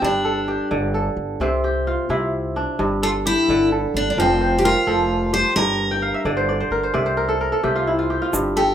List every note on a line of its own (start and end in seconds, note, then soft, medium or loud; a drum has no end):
0.00 0.57 G1 medium
0.00 1.45 G2 medium
0.00 0.15 F4 medium
0.00 0.47 G4 medium
0.00 0.24 A4 medium
0.00 0.31 A#4 medium
0.04 0.68 D4 medium
0.25 0.94 A4 medium
0.48 1.64 G4 medium
0.71 1.08 G1 loud
0.71 1.45 D3 medium
0.94 2.26 A4 medium
1.17 1.35 G1 medium
1.40 1.95 C2 loud
1.40 2.09 C3 medium
1.40 3.21 C4 medium
1.64 3.05 G4 medium
1.87 3.38 F4 medium
2.09 2.65 C2 medium
2.09 2.84 C3 medium
2.09 3.67 E4 medium
2.56 4.24 D4 medium
2.79 3.34 G1 medium
2.79 4.23 G2 medium
3.03 3.09 F4 medium
3.03 3.72 A4 medium
3.26 3.69 E4 loud
3.26 4.67 G4 medium
3.48 3.85 G1 loud
3.48 4.23 D3 medium
3.72 4.71 A4 medium
3.94 4.13 G1 medium
3.94 4.09 D4 medium
4.10 4.17 D4 medium
4.17 4.72 F1 loud
4.17 4.86 F3 medium
4.17 4.59 C4 medium
4.17 5.69 F4 medium
4.41 5.60 C5 medium
4.58 4.65 G4 medium
4.65 5.33 F4 medium
4.65 5.92 A#4 medium
4.87 5.42 F1 loud
4.87 5.61 F3 medium
4.87 6.19 A4 medium
5.33 6.74 G4 medium
5.33 5.55 C5 medium
5.56 6.11 G1 medium
5.56 7.00 G2 medium
5.56 6.21 A#4 medium
5.91 6.84 G5 medium
6.02 7.02 F5 medium
6.14 7.18 E5 medium
6.25 6.62 G1 medium
6.25 7.00 D3 medium
6.25 6.48 D5 medium
6.37 6.60 C5 medium
6.49 6.94 D5 medium
6.60 6.83 C5 medium
6.71 6.89 G1 medium
6.71 7.17 A#4 medium
6.83 7.05 C5 medium
6.94 7.50 C2 medium
6.94 7.62 C3 medium
6.94 8.05 D5 medium
7.06 8.25 C5 medium
7.17 7.40 A#4 medium
7.29 7.52 A4 medium
7.41 8.62 A#4 medium
7.52 8.56 A4 medium
7.63 8.19 C2 medium
7.63 8.38 C3 medium
7.63 8.10 G4 medium
7.76 7.98 F4 medium
7.87 8.28 E4 medium
7.99 8.21 F4 medium
8.10 8.75 G4 medium
8.22 8.75 F4 medium
8.33 8.75 G1 medium
8.33 8.75 G2 medium
8.33 shaker medium
8.56 8.75 G4 medium
8.56 8.75 A4 medium